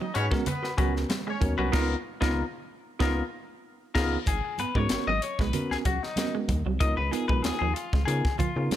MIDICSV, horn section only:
0, 0, Header, 1, 2, 480
1, 0, Start_track
1, 0, Tempo, 634921
1, 1309, Time_signature, 4, 2, 24, 8
1, 6626, End_track
2, 0, Start_track
2, 0, Title_t, "Horn section"
2, 0, Program_c, 0, 61
2, 0, Note_on_c, 0, 63, 76
2, 0, Note_on_c, 0, 75, 78
2, 86, Note_off_c, 0, 75, 0
2, 87, Note_off_c, 0, 63, 0
2, 116, Note_on_c, 0, 73, 101
2, 117, Note_on_c, 0, 61, 99
2, 190, Note_off_c, 0, 73, 0
2, 191, Note_off_c, 0, 61, 0
2, 351, Note_on_c, 0, 59, 100
2, 351, Note_on_c, 0, 71, 104
2, 542, Note_off_c, 0, 59, 0
2, 542, Note_off_c, 0, 71, 0
2, 960, Note_on_c, 0, 73, 99
2, 961, Note_on_c, 0, 61, 87
2, 1150, Note_off_c, 0, 73, 0
2, 1151, Note_off_c, 0, 61, 0
2, 6626, End_track
0, 0, End_of_file